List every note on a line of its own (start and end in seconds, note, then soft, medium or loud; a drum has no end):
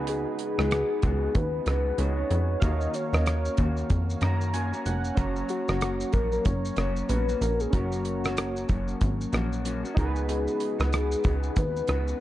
0.00 0.26 C#2 medium
0.00 0.58 C#3 medium
0.00 0.59 G#3 medium
0.00 0.58 B3 medium
0.00 1.94 D#4 medium
0.00 0.57 F#4 medium
0.00 1.94 F#4 medium
0.00 1.95 G#4 medium
0.00 1.96 B4 medium
0.07 1.37 G#4 loud
0.07 closed hi-hat medium
0.39 closed hi-hat medium
0.58 0.84 C#2 loud
0.58 1.02 G#3 soft
0.58 1.03 B3 soft
0.58 1.03 F#4 medium
0.58 cross-stick medium
0.71 cross-stick medium
0.71 closed hi-hat medium
1.02 1.29 C#2 medium
1.02 1.64 C#3 medium
1.02 1.65 G#3 medium
1.02 1.66 B3 medium
1.02 1.67 F#4 medium
1.02 kick medium
1.02 closed hi-hat soft
1.35 1.61 D#2 medium
1.35 2.01 B4 loud
1.35 kick medium
1.35 closed hi-hat medium
1.66 1.92 C#2 medium
1.66 1.96 C#3 medium
1.66 1.97 G#3 medium
1.66 1.98 B3 medium
1.66 1.98 F#4 medium
1.66 cross-stick medium
1.66 closed hi-hat soft
1.97 2.24 C#2 loud
1.97 2.17 C#3 medium
1.97 2.17 G#3 medium
1.97 2.16 B3 medium
1.97 2.62 D#4 soft
1.97 2.60 F#4 soft
1.97 2.15 F#4 medium
1.97 2.63 G#4 soft
1.97 2.63 B4 soft
1.97 2.64 C#5 loud
1.97 closed hi-hat medium
2.16 2.61 G#3 soft
2.16 2.62 B3 soft
2.16 2.61 F#4 soft
2.31 2.56 F2 medium
2.31 closed hi-hat soft
2.60 2.88 D#2 loud
2.60 3.13 D#3 medium
2.60 3.13 A#3 medium
2.60 3.12 C#4 medium
2.60 5.13 F#4 medium
2.60 3.11 F#4 medium
2.60 5.14 A#4 medium
2.60 2.96 D#5 loud
2.60 5.13 F5 medium
2.60 kick loud
2.60 closed hi-hat medium
2.60 shaker medium
2.65 5.15 C#5 medium
2.81 shaker soft
2.94 3.16 C#5 loud
2.94 closed hi-hat medium
2.94 shaker soft
3.13 3.49 D#2 medium
3.13 3.57 A#3 soft
3.13 3.58 C#4 soft
3.13 3.58 F#4 medium
3.13 3.29 D#5 loud
3.13 cross-stick medium
3.13 shaker soft
3.26 3.91 C#5 medium
3.26 cross-stick medium
3.26 closed hi-hat medium
3.26 shaker medium
3.45 shaker medium
3.57 3.84 D#2 medium
3.57 4.20 D#3 medium
3.57 4.22 A#3 medium
3.57 4.22 C#4 medium
3.57 4.23 F#4 medium
3.57 kick medium
3.57 closed hi-hat soft
3.57 shaker soft
3.77 shaker soft
3.90 4.16 F2 medium
3.90 kick medium
3.90 closed hi-hat medium
3.90 shaker medium
4.10 shaker soft
4.21 4.73 F#2 medium
4.21 4.52 D#3 medium
4.21 4.53 A#3 medium
4.21 4.53 C#4 medium
4.21 4.54 F#4 medium
4.21 4.52 A#5 medium
4.21 cross-stick medium
4.21 closed hi-hat soft
4.21 shaker soft
4.41 shaker soft
4.53 4.73 D#3 medium
4.53 4.73 A#3 medium
4.53 4.72 C#4 medium
4.53 4.71 F#4 medium
4.53 4.84 G#5 medium
4.53 closed hi-hat medium
4.53 shaker medium
4.72 5.16 A#3 soft
4.72 5.17 C#4 soft
4.72 5.17 F#4 medium
4.72 shaker medium
4.86 5.12 F1 medium
4.86 5.16 F#5 medium
4.86 closed hi-hat soft
4.86 shaker soft
5.04 shaker soft
5.15 5.43 F#1 loud
5.15 5.68 F#3 medium
5.15 5.69 A#3 medium
5.15 7.68 C#4 medium
5.15 5.68 C#4 loud
5.15 7.69 F#4 medium
5.15 5.67 F#4 medium
5.15 7.70 A#5 medium
5.15 kick loud
5.15 closed hi-hat medium
5.15 shaker medium
5.20 7.70 C#5 medium
5.36 shaker soft
5.49 6.14 F#4 loud
5.49 closed hi-hat soft
5.49 shaker soft
5.68 6.05 F#1 medium
5.68 6.12 A#3 soft
5.68 6.13 C#4 soft
5.68 6.13 F#4 medium
5.68 cross-stick medium
5.68 shaker soft
5.81 cross-stick medium
5.81 closed hi-hat medium
5.81 shaker medium
6.01 shaker medium
6.13 6.39 A#1 medium
6.13 6.77 F#3 medium
6.13 6.77 A#3 medium
6.13 6.78 C#4 medium
6.13 6.79 F#4 medium
6.13 6.32 A#4 medium
6.13 kick medium
6.13 closed hi-hat soft
6.13 shaker soft
6.32 6.45 A#4 medium
6.32 shaker soft
6.45 6.71 F#1 medium
6.45 7.06 C#5 loud
6.45 kick medium
6.45 closed hi-hat medium
6.45 shaker medium
6.65 shaker soft
6.76 7.03 F#1 medium
6.76 7.08 F#3 medium
6.76 7.09 A#3 medium
6.76 7.09 C#4 medium
6.76 7.10 F#4 medium
6.76 cross-stick medium
6.76 closed hi-hat soft
6.76 shaker soft
6.96 shaker soft
7.09 7.35 A#1 loud
7.09 7.28 F#3 medium
7.09 7.28 A#3 medium
7.09 7.28 C#4 medium
7.09 7.26 F#4 medium
7.09 7.43 B4 loud
7.09 closed hi-hat medium
7.09 shaker medium
7.28 7.72 A#3 soft
7.28 7.72 C#4 soft
7.28 7.73 F#4 soft
7.28 shaker medium
7.41 7.67 A#1 medium
7.41 7.62 A#4 medium
7.41 closed hi-hat soft
7.41 shaker soft
7.60 7.72 G#4 medium
7.60 shaker soft
7.71 8.65 F#1 loud
7.71 8.24 F#3 medium
7.71 8.24 A#3 medium
7.71 9.91 C#4 medium
7.71 8.24 C#4 medium
7.71 9.92 F#4 medium
7.71 8.97 F#4 medium
7.71 8.22 F#4 medium
7.71 9.93 A#4 medium
7.71 kick loud
7.71 closed hi-hat medium
7.71 shaker medium
7.76 9.94 C#5 medium
7.92 shaker soft
8.05 closed hi-hat soft
8.05 shaker soft
8.24 8.68 A#3 soft
8.24 8.69 C#4 soft
8.24 8.69 F#4 medium
8.24 cross-stick medium
8.24 shaker soft
8.37 cross-stick medium
8.37 closed hi-hat medium
8.37 shaker medium
8.57 shaker medium
8.69 8.95 F#1 medium
8.69 9.32 F#3 medium
8.69 9.32 A#3 medium
8.69 9.33 C#4 medium
8.69 9.34 F#4 medium
8.69 kick medium
8.69 closed hi-hat soft
8.69 shaker soft
8.88 shaker soft
9.01 9.27 G#1 medium
9.01 kick medium
9.01 closed hi-hat medium
9.01 shaker medium
9.21 shaker medium
9.32 9.84 A#1 loud
9.32 9.63 F#3 medium
9.32 9.64 A#3 medium
9.32 9.65 C#4 medium
9.32 9.65 F#4 medium
9.32 cross-stick medium
9.32 closed hi-hat soft
9.32 shaker soft
9.53 shaker soft
9.65 9.84 F#3 medium
9.65 9.84 A#3 medium
9.65 9.83 C#4 medium
9.65 9.82 F#4 medium
9.65 closed hi-hat medium
9.65 shaker medium
9.84 9.96 A#3 soft
9.84 9.97 C#4 medium
9.84 9.97 F#4 medium
9.84 shaker soft
9.94 10.48 C#2 medium
9.94 10.79 C#3 medium
9.94 10.79 G#3 medium
9.94 10.78 B3 medium
9.94 12.20 D#4 medium
9.94 12.20 F#4 medium
9.94 10.78 F#4 medium
9.94 12.20 G#4 medium
9.94 kick loud
9.94 closed hi-hat soft
9.94 shaker soft
9.99 10.06 A#4 medium
10.06 12.20 B4 medium
10.16 shaker soft
10.29 11.53 G#4 loud
10.29 closed hi-hat medium
10.29 shaker medium
10.48 shaker soft
10.60 closed hi-hat soft
10.60 shaker soft
10.78 11.16 C#2 medium
10.78 11.23 G#3 soft
10.78 11.24 B3 soft
10.78 11.24 F#4 medium
10.78 cross-stick medium
10.78 shaker soft
10.93 cross-stick medium
10.93 closed hi-hat medium
10.93 shaker medium
11.12 shaker medium
11.24 11.50 C#2 medium
11.24 11.86 C#3 medium
11.24 11.87 G#3 medium
11.24 11.88 B3 medium
11.24 11.89 F#4 medium
11.24 kick medium
11.24 closed hi-hat soft
11.24 shaker soft
11.43 shaker soft
11.56 11.82 D#2 medium
11.56 12.17 B4 medium
11.56 kick medium
11.56 closed hi-hat medium
11.56 shaker medium
11.77 shaker soft
11.87 12.14 C#2 medium
11.87 12.18 C#3 medium
11.87 12.18 G#3 medium
11.87 12.19 B3 medium
11.87 12.20 F#4 medium
11.87 cross-stick medium
11.87 closed hi-hat soft
11.87 shaker soft
12.08 shaker soft